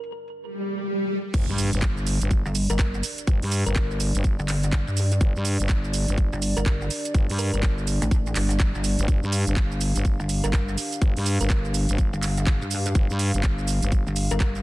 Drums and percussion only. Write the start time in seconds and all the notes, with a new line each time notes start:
0.04 closed hi-hat
0.28 closed hi-hat
1.34 kick, closed hi-hat, crash, shaker
1.49 shaker
1.58 open hi-hat, shaker
1.73 closed hi-hat, shaker
1.82 kick, clap, closed hi-hat, shaker
1.97 shaker
2.07 open hi-hat, shaker
2.21 closed hi-hat, shaker
2.31 kick, closed hi-hat, shaker
2.46 shaker
2.55 open hi-hat, shaker
2.70 closed hi-hat, shaker
2.79 kick, clap, closed hi-hat, shaker
2.94 shaker
3.03 open hi-hat, shaker
3.18 closed hi-hat, shaker
3.27 kick, closed hi-hat, shaker
3.42 open hi-hat, shaker
3.52 open hi-hat, shaker
3.67 closed hi-hat, shaker
3.76 kick, clap, closed hi-hat, shaker
3.91 shaker
4.00 open hi-hat, shaker
4.15 closed hi-hat, shaker
4.24 kick, closed hi-hat, shaker
4.39 shaker
4.48 clap, open hi-hat, shaker
4.63 closed hi-hat, shaker
4.73 kick, clap, closed hi-hat, shaker
4.88 shaker
4.97 open hi-hat, shaker
5.12 closed hi-hat, shaker
5.21 kick, closed hi-hat, shaker
5.36 shaker
5.45 open hi-hat, shaker
5.60 closed hi-hat, shaker
5.69 kick, clap, closed hi-hat, shaker
5.84 shaker
5.94 open hi-hat, shaker
6.08 closed hi-hat, shaker
6.18 kick, closed hi-hat, shaker
6.33 shaker
6.42 open hi-hat, shaker
6.57 closed hi-hat, shaker
6.66 kick, clap, closed hi-hat, shaker
6.81 shaker
6.90 open hi-hat, shaker
7.05 closed hi-hat, shaker
7.15 kick, closed hi-hat, shaker
7.29 open hi-hat, shaker
7.39 open hi-hat, shaker
7.54 closed hi-hat, shaker
7.63 kick, clap, closed hi-hat, shaker
7.78 shaker
7.87 open hi-hat, shaker
8.02 closed hi-hat, shaker
8.11 kick, closed hi-hat, shaker
8.26 shaker
8.36 clap, open hi-hat, shaker
8.51 closed hi-hat, shaker
8.60 kick, clap, closed hi-hat, shaker
8.75 shaker
8.84 open hi-hat, shaker
8.99 closed hi-hat, shaker
9.08 kick, closed hi-hat, shaker
9.23 shaker
9.32 open hi-hat, shaker
9.47 closed hi-hat, shaker
9.57 kick, clap, closed hi-hat, shaker
9.71 shaker
9.81 open hi-hat, shaker
9.96 closed hi-hat, shaker
10.05 kick, closed hi-hat, shaker
10.20 shaker
10.29 open hi-hat, shaker
10.44 closed hi-hat, shaker
10.53 kick, clap, closed hi-hat, shaker
10.68 shaker
10.78 open hi-hat, shaker
10.92 closed hi-hat, shaker
11.02 kick, closed hi-hat, shaker
11.17 open hi-hat, shaker
11.26 open hi-hat, shaker
11.41 closed hi-hat, shaker
11.50 kick, clap, closed hi-hat, shaker
11.65 shaker
11.74 open hi-hat, shaker
11.89 closed hi-hat, shaker
11.98 kick, closed hi-hat, shaker
12.13 shaker
12.23 clap, open hi-hat, shaker
12.37 closed hi-hat, shaker
12.47 kick, clap, closed hi-hat, shaker
12.62 shaker
12.71 open hi-hat, shaker
12.86 closed hi-hat, shaker
12.95 kick, closed hi-hat, shaker
13.10 shaker
13.19 open hi-hat, shaker
13.34 closed hi-hat, shaker
13.43 kick, clap, closed hi-hat, shaker
13.58 shaker
13.68 open hi-hat, shaker
13.82 closed hi-hat, shaker
13.92 kick, closed hi-hat, shaker
14.07 shaker
14.16 open hi-hat, shaker
14.31 closed hi-hat, shaker
14.40 kick, clap, closed hi-hat, shaker
14.55 shaker